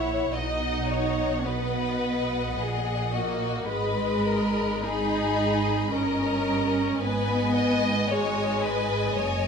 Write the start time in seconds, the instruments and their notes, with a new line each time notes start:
Already playing: double bass section A#1, cello section A#2, viola section E4, violin section C#5 F#5
0.33 double bass section B1, cello section B2, viola section D#4, violin section D#5 F#5
0.90 violin section C#5
1.46 viola section B3, violin section B4 D#5 F#5
2.57 double bass section A#1, cello section A#2, violin section G#4
3.12 viola section A#3, violin section F#4
3.67 double bass section G#1, cello section G#2, viola section G#3, violin section B4 D#5 B5
4.28 violin section A#4
4.84 viola section D#4, violin section G#4 D#5 B5
5.92 double bass section G1, cello section G2, viola section C#4, violin section A#4 D#5 A#5
7.01 double bass section G#1, cello section G#2, viola section B3, violin section B4 D#5 G#5
7.56 violin section D#5
8.10 viola section G#3, violin section C#5 D#5 G#5
8.62 violin section B4
9.15 double bass section F#1, cello section F#2, violin section C#5